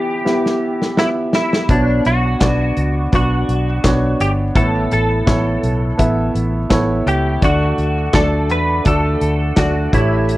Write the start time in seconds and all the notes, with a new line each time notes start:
Already playing: E3 B3 E4 G4 E5
0.25 B3 E4 G4 E5, snare
0.46 snare
0.82 snare
0.97 B3 E4 G4 E5, snare
1.33 E4, snare
1.53 snare
1.69 B1 B2 B3 D4 F#4 C#5, kick, closed hi-hat
2.05 B1 F#4, closed hi-hat
2.40 B1 B3 D4 F#4 D5, kick, snare, clap, closed hi-hat
2.77 C#2, closed hi-hat
3.12 B1 B3 D4 F#4 D5, kick, closed hi-hat
3.48 B1, closed hi-hat
3.84 B1 B3 D4 F#4 C#5, kick, snare, clap, closed hi-hat
4.20 G1 G4, closed hi-hat
4.55 A1 A2 B3 E4 A4 C#5, kick, closed hi-hat
4.91 A1 A4, closed hi-hat
5.26 A1 B3 E4 A4 C#5, kick, snare, clap, closed hi-hat
5.63 B1, closed hi-hat
5.98 A1 B3 E4 A4 E5, kick, closed hi-hat
6.35 A1, closed hi-hat
6.69 A1 B3 E4 A4 C#5, kick, snare, clap, closed hi-hat
7.06 C#2 G4, closed hi-hat
7.41 D2 D3 A3 D4 F#4 D5, kick, closed hi-hat
7.78 D2, closed hi-hat
8.13 D2 A3 D4 F#4 A4 D5, kick, snare, clap, closed hi-hat
8.49 E2 B4, closed hi-hat
8.85 D2 A3 D4 F#4 A4 D5, kick, closed hi-hat
9.21 D2, closed hi-hat
9.57 D2 A3 D4 F#4 D5, kick, snare, clap, closed hi-hat
9.92 A1 A2 A3 E4 G4 C#5, kick, closed hi-hat
10.29 closed hi-hat